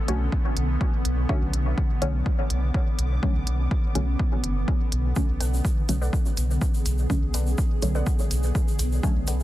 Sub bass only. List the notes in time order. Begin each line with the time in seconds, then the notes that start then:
0.08 B1
0.57 B1
1.05 B1
1.42 B1
1.53 B1
2.02 B1
2.50 B1
2.99 B1
3.35 B1
3.47 B1
3.95 B1
4.44 F#1
4.92 B1
5.29 B1
5.40 B1
5.89 B1
6.37 B1
6.86 B1
7.22 B1
7.34 B1
7.82 B1
8.31 B1
8.79 B1
9.16 B1
9.28 B1